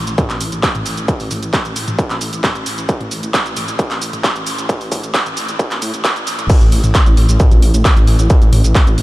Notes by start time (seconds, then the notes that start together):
0.07 A1, closed hi-hat, shaker
0.18 kick, closed hi-hat, mid tom, shaker
0.30 A#1, clap, closed hi-hat, shaker
0.41 A1, open hi-hat, shaker
0.52 A1, closed hi-hat, shaker
0.63 kick, clap, closed hi-hat, shaker
0.75 A1, closed hi-hat, mid tom, shaker
0.86 A1, open hi-hat, shaker
0.97 A1, closed hi-hat, shaker
1.08 kick, closed hi-hat, shaker
1.20 A1, open hi-hat, shaker
1.31 A1, open hi-hat, mid tom, shaker
1.42 A1, closed hi-hat, shaker
1.53 kick, clap, closed hi-hat, shaker
1.65 A1, closed hi-hat, shaker
1.76 A1, open hi-hat, shaker
1.88 A1, closed hi-hat, mid tom, shaker
1.99 kick, closed hi-hat, shaker
2.10 A#1, clap, closed hi-hat, shaker
2.21 A1, open hi-hat, shaker
2.33 A1, closed hi-hat, shaker
2.44 kick, clap, closed hi-hat, mid tom, shaker
2.55 A1, closed hi-hat, shaker
2.66 A1, open hi-hat, shaker
2.78 A1, closed hi-hat, shaker
2.89 kick, closed hi-hat, shaker
3.00 A1, closed hi-hat, mid tom
3.11 A1, open hi-hat, shaker
3.23 A1, closed hi-hat, shaker
3.34 kick, clap, closed hi-hat, shaker
3.46 A1, closed hi-hat, shaker
3.56 A1, open hi-hat, mid tom, shaker
3.68 A1, closed hi-hat, shaker
3.79 kick, closed hi-hat, shaker
3.91 A#1, clap, closed hi-hat, shaker
4.01 A1, open hi-hat, shaker
4.13 A1, closed hi-hat, mid tom, shaker
4.24 kick, clap, closed hi-hat, shaker
4.36 A1, closed hi-hat, shaker
4.47 A1, open hi-hat, shaker
4.58 A1, closed hi-hat, shaker
4.69 kick, closed hi-hat, mid tom, shaker
4.81 A1, open hi-hat, shaker
4.92 A1, kick, open hi-hat, shaker
5.03 A1, closed hi-hat, shaker
5.14 kick, clap, closed hi-hat, shaker
5.26 A1, closed hi-hat, mid tom, shaker
5.37 A1, open hi-hat, shaker
5.49 A1, closed hi-hat, shaker
5.59 kick, closed hi-hat, shaker
5.71 A#1, clap, closed hi-hat, shaker
5.82 A2, open hi-hat, mid tom, shaker
5.94 A1, closed hi-hat, shaker
6.05 kick, clap, closed hi-hat, shaker
6.16 A1, closed hi-hat, shaker
6.27 A#1, open hi-hat, shaker
6.39 A1, closed hi-hat, mid tom, shaker
6.50 kick, closed hi-hat, crash, shaker
6.61 A1, closed hi-hat, shaker
6.72 A1, open hi-hat
6.84 A1, closed hi-hat, mid tom, shaker
6.95 kick, clap, closed hi-hat, shaker
7.06 A1, closed hi-hat, shaker
7.17 A1, open hi-hat
7.29 A1, closed hi-hat, shaker
7.40 kick, closed hi-hat, mid tom, shaker
7.51 A#1, closed hi-hat, shaker
7.62 A1, open hi-hat
7.74 A1, closed hi-hat, shaker
7.85 kick, clap, closed hi-hat, shaker
7.97 A1, closed hi-hat, mid tom, shaker
8.07 A1, open hi-hat
8.19 A1, closed hi-hat, shaker
8.30 kick, closed hi-hat, shaker
8.42 A1, closed hi-hat, shaker
8.53 A1, open hi-hat, mid tom
8.64 A1, closed hi-hat, shaker
8.75 kick, clap, closed hi-hat, shaker
8.87 A1, closed hi-hat, shaker
8.98 A1, open hi-hat